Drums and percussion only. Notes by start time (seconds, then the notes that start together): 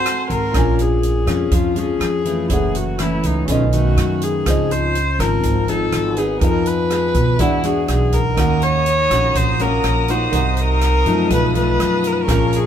0.06 cross-stick, closed hi-hat
0.30 kick, closed hi-hat
0.54 kick, cross-stick, closed hi-hat
0.79 closed hi-hat
1.03 closed hi-hat
1.27 cross-stick, closed hi-hat
1.51 kick, closed hi-hat
1.76 closed hi-hat
2.01 cross-stick, closed hi-hat
2.25 closed hi-hat
2.50 kick, closed hi-hat
2.75 closed hi-hat
2.99 cross-stick, closed hi-hat
3.23 closed hi-hat
3.48 kick, closed hi-hat
3.73 closed hi-hat
3.97 cross-stick, closed hi-hat
4.22 closed hi-hat
4.46 kick, cross-stick, closed hi-hat
4.71 closed hi-hat
4.95 closed hi-hat
5.20 cross-stick, closed hi-hat
5.43 kick, closed hi-hat
5.68 closed hi-hat
5.92 cross-stick, closed hi-hat
6.17 closed hi-hat
6.41 kick, closed hi-hat
6.66 closed hi-hat
6.90 cross-stick, closed hi-hat
7.14 kick, closed hi-hat
7.39 kick, closed hi-hat
7.63 closed hi-hat
7.88 cross-stick, closed hi-hat
8.12 kick, closed hi-hat
8.37 kick, cross-stick, closed hi-hat
8.62 closed hi-hat
8.86 closed hi-hat
9.11 cross-stick, closed hi-hat
9.35 kick, closed hi-hat
9.59 closed hi-hat
9.84 cross-stick, closed hi-hat
10.08 closed hi-hat
10.33 kick, closed hi-hat
10.57 closed hi-hat
10.81 cross-stick, closed hi-hat
11.06 closed hi-hat
11.30 kick, closed hi-hat
11.55 closed hi-hat
11.80 cross-stick, closed hi-hat
12.04 closed hi-hat
12.28 kick, cross-stick, closed hi-hat
12.53 closed hi-hat